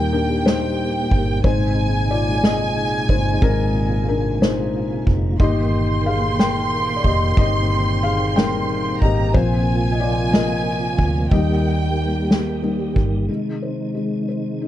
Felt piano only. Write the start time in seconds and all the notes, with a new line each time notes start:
Already playing: G3 A#3 D#4 F4 G4 A#4 C5 D5 D#5
0.13 D4 A#4
0.46 D#4 C5
1.44 G#3 C4 D#4 C5
2.11 F4 D5
2.35 D5
2.44 G#4 D#5
3.10 D#4 C5
3.42 G#3 C4 D#4 A#4
4.08 D4 A#4
4.42 D#4 C5
5.40 D#3 A#3 D#4 G4 D#5
6.06 G#4 F5
6.40 A#4 G5
6.96 D5
7.05 G4 D#5
7.37 D#3 A#3 D#4 G4 D#5
8.03 G#4 F5
8.36 G3 A#3 D#4 A#4 G5
9.02 G4 D#5
9.34 F3 A#3 C4 F4 C5
9.92 D#5
10.00 F4 D5
10.33 A#4 D#5
11.31 G3 A#3 D#4 G4 D#5
12.63 G3 A#3 D#4
13.29 G#3
13.62 C5
13.95 G#3
14.28 C5
14.62 D#4